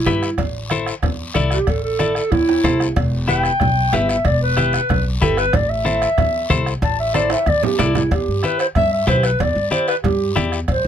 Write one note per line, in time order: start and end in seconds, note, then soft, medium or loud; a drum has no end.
0.00 0.37 E4 medium
0.06 0.32 G2 medium
0.06 0.29 E4 medium
0.06 0.29 G4 medium
0.06 0.29 B4 medium
0.06 bombo rim medium
0.06 cowbell medium
0.06 high conga medium
0.06 low conga medium
0.06 low timbale medium
0.06 short guiro medium
0.23 bombo rim medium
0.23 short guiro medium
0.38 0.90 A1 medium
0.38 bombo low medium
0.38 bombo rim medium
0.38 cowbell loud
0.38 high conga soft
0.38 low conga medium
0.38 long guiro medium
0.70 0.93 E4 medium
0.70 0.94 A4 medium
0.70 0.94 C5 medium
0.70 bombo rim medium
0.70 cowbell medium
0.70 high conga medium
0.70 short guiro medium
0.86 bombo rim medium
0.86 short guiro medium
1.02 1.29 E2 medium
1.02 bombo low medium
1.02 bombo rim medium
1.02 cowbell medium
1.02 high conga soft
1.02 low conga medium
1.02 long guiro medium
1.34 1.61 C2 medium
1.34 1.58 E4 medium
1.34 1.58 A4 medium
1.34 1.58 D5 loud
1.34 bombo rim medium
1.34 cowbell medium
1.34 high conga medium
1.34 low conga medium
1.34 short guiro medium
1.51 1.67 G4 medium
1.51 bombo rim medium
1.51 short guiro medium
1.67 2.19 A1 medium
1.67 1.83 A4 medium
1.67 bombo low medium
1.67 bombo rim medium
1.67 cowbell loud
1.67 high conga soft
1.67 long guiro medium
1.84 2.15 A4 medium
1.99 2.22 E4 medium
1.99 2.22 A4 medium
1.99 2.23 D5 medium
1.99 bombo rim medium
1.99 cowbell medium
1.99 high conga medium
1.99 short guiro medium
2.15 2.33 A4 loud
2.15 bombo rim medium
2.15 short guiro medium
2.32 2.58 E2 medium
2.32 2.94 E4 loud
2.32 bombo low medium
2.32 bombo rim medium
2.32 cowbell medium
2.32 high conga soft
2.32 low conga medium
2.32 high timbale medium
2.32 long guiro medium
2.49 high timbale medium
2.64 2.90 C2 medium
2.64 2.87 E4 medium
2.64 2.87 A4 medium
2.64 2.87 C5 medium
2.64 bombo low medium
2.64 bombo rim medium
2.64 cowbell medium
2.64 high conga medium
2.64 low conga medium
2.64 low timbale medium
2.64 short guiro medium
2.80 bombo rim medium
2.80 low timbale medium
2.80 short guiro medium
2.96 3.48 E1 loud
2.96 bombo low medium
2.96 bombo rim medium
2.96 cowbell loud
2.96 long guiro medium
3.28 3.51 E4 medium
3.28 3.51 G4 medium
3.28 3.51 B4 medium
3.28 3.95 G5 loud
3.28 bombo rim medium
3.28 cowbell medium
3.28 high conga medium
3.28 short guiro medium
3.44 bombo rim medium
3.44 short guiro medium
3.60 3.87 B1 medium
3.60 bombo low medium
3.60 bombo rim medium
3.60 cowbell medium
3.60 high conga soft
3.60 low conga medium
3.60 long guiro medium
3.92 4.19 G1 loud
3.92 4.16 E4 medium
3.92 4.16 G4 medium
3.92 4.16 B4 medium
3.92 4.09 E5 medium
3.92 bombo rim medium
3.92 cowbell medium
3.92 high conga medium
3.92 low conga medium
3.92 low timbale medium
3.92 short guiro medium
4.09 4.27 E5 medium
4.09 bombo rim medium
4.09 short guiro medium
4.25 4.76 E1 loud
4.25 4.41 D5 medium
4.25 bombo low medium
4.25 bombo rim medium
4.25 cowbell loud
4.25 high conga soft
4.25 long guiro medium
4.43 5.05 B4 medium
4.57 4.80 E4 medium
4.57 4.80 G4 medium
4.57 4.80 B4 medium
4.57 bombo rim medium
4.57 cowbell medium
4.57 high conga medium
4.57 short guiro medium
4.73 bombo rim medium
4.73 short guiro medium
4.89 5.16 B1 medium
4.89 bombo low medium
4.89 bombo rim medium
4.89 cowbell medium
4.89 high conga soft
4.89 low conga medium
4.89 long guiro medium
5.21 5.47 G1 medium
5.21 5.44 E4 medium
5.21 5.45 G4 medium
5.21 5.40 A4 loud
5.21 5.45 B4 medium
5.21 bombo low medium
5.21 bombo rim medium
5.21 cowbell medium
5.21 high conga medium
5.21 short guiro medium
5.37 5.56 B4 loud
5.37 bombo rim medium
5.37 short guiro medium
5.53 6.05 A1 loud
5.53 5.71 D5 medium
5.53 bombo low medium
5.53 bombo rim medium
5.53 cowbell loud
5.53 high conga soft
5.53 low conga medium
5.53 long guiro medium
5.69 6.63 E5 loud
5.85 6.08 E4 medium
5.85 6.08 A4 medium
5.85 6.09 C5 medium
5.85 bombo rim medium
5.85 cowbell medium
5.85 high conga medium
5.85 short guiro medium
6.02 bombo rim medium
6.02 short guiro medium
6.18 6.44 E2 medium
6.18 bombo low medium
6.18 bombo rim medium
6.18 cowbell medium
6.18 high conga soft
6.18 low conga medium
6.18 long guiro medium
6.50 6.76 C2 medium
6.50 6.73 E4 medium
6.50 6.73 A4 medium
6.50 6.73 C5 loud
6.50 bombo low medium
6.50 bombo rim medium
6.50 cowbell medium
6.50 high conga medium
6.50 low timbale medium
6.50 short guiro medium
6.66 bombo rim medium
6.66 short guiro medium
6.82 7.34 A1 loud
6.82 6.99 A5 medium
6.82 bombo low medium
6.82 bombo rim medium
6.82 cowbell loud
6.82 high conga soft
6.82 long guiro medium
7.00 7.14 E5 medium
7.14 7.37 E4 medium
7.14 7.37 A4 medium
7.14 7.38 C5 medium
7.14 7.31 D5 medium
7.14 bombo rim medium
7.14 cowbell medium
7.14 high conga medium
7.14 high timbale medium
7.14 short guiro medium
7.30 7.50 E5 medium
7.30 bombo rim medium
7.30 high timbale loud
7.30 short guiro medium
7.46 7.72 E2 medium
7.46 7.65 D5 medium
7.46 bombo low medium
7.46 bombo rim medium
7.46 cowbell medium
7.46 high conga medium
7.46 long guiro medium
7.63 7.82 G4 medium
7.63 low conga medium
7.63 low timbale medium
7.79 8.05 C2 medium
7.79 8.01 E4 medium
7.79 7.95 E4 medium
7.79 8.02 A4 medium
7.79 8.02 D5 medium
7.79 bombo rim medium
7.79 cowbell medium
7.79 low conga loud
7.79 low timbale medium
7.79 short guiro medium
7.95 8.11 E4 loud
7.95 bombo rim medium
7.95 low conga medium
7.95 low timbale medium
7.95 short guiro medium
8.11 8.24 E2 loud
8.11 8.47 G4 medium
8.11 bombo low medium
8.11 bombo rim medium
8.11 cowbell loud
8.11 high conga soft
8.11 long guiro medium
8.28 8.41 G2 medium
8.43 8.66 E4 medium
8.43 8.66 G4 medium
8.43 8.66 B4 medium
8.43 8.59 B4 medium
8.43 bombo rim medium
8.43 cowbell medium
8.43 high conga medium
8.43 short guiro medium
8.59 8.67 C5 medium
8.59 bombo rim medium
8.59 short guiro medium
8.75 9.01 G2 loud
8.75 8.91 E5 loud
8.75 bombo low medium
8.75 bombo rim medium
8.75 cowbell medium
8.75 high conga soft
8.75 low conga medium
8.75 long guiro medium
8.93 9.07 E5 loud
9.07 9.33 B1 loud
9.07 9.30 E4 medium
9.07 9.30 G4 medium
9.07 9.31 B4 medium
9.07 9.26 C5 loud
9.07 bombo low medium
9.07 bombo rim medium
9.07 cowbell medium
9.07 high conga medium
9.07 low conga medium
9.07 low timbale medium
9.07 short guiro medium
9.23 9.42 B4 medium
9.23 bombo rim medium
9.23 short guiro medium
9.39 9.53 E2 loud
9.39 9.71 D5 medium
9.39 bombo low medium
9.39 bombo rim medium
9.39 cowbell loud
9.39 high conga soft
9.39 low conga medium
9.39 long guiro medium
9.56 9.69 G2 medium
9.71 9.94 E4 medium
9.71 9.94 G4 medium
9.71 9.87 C5 medium
9.71 9.95 D5 medium
9.71 bombo rim medium
9.71 cowbell medium
9.71 high conga medium
9.71 short guiro medium
9.88 9.95 B4 medium
9.88 bombo rim medium
9.88 short guiro medium
10.04 10.30 G2 loud
10.04 10.34 G4 medium
10.04 bombo low medium
10.04 bombo rim medium
10.04 cowbell medium
10.04 high conga soft
10.04 low conga medium
10.04 long guiro medium
10.36 10.63 E2 loud
10.36 10.59 E4 medium
10.36 10.59 G4 medium
10.36 10.59 D5 medium
10.36 bombo rim medium
10.36 cowbell medium
10.36 high conga medium
10.36 low conga medium
10.36 short guiro medium
10.52 bombo rim medium
10.52 short guiro medium
10.68 10.81 A1 loud
10.68 10.87 C5 medium
10.68 bombo low medium
10.68 bombo rim medium
10.68 cowbell loud
10.68 high conga soft
10.68 long guiro medium